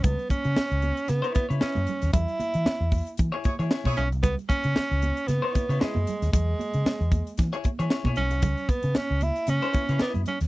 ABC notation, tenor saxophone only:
X:1
M:4/4
L:1/8
Q:"Swing 16ths" 1/4=114
K:C#m
V:1 name="Tenor saxophone"
B, C3 B, B, C2 | E4 z3 C | B, C3 B,2 G,2 | G,4 z3 C- |
C B, C E C2 B, C |]